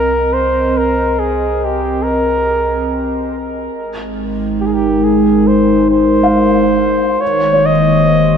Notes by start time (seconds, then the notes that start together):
Already playing: C2 C4 A#4 D#5
0.34 C5
0.78 A#4
1.19 G#4
1.65 G4
2.03 A#4
3.73 G#1 G#3
3.97 D#4
4.09 A#4
4.61 G4
4.66 G#4
4.74 G4
5.04 G#4
5.47 C5
5.90 C5
6.23 F5
7.21 G1 D#3 C#5
7.36 A#3
7.53 C#5
7.66 D#5
7.73 G4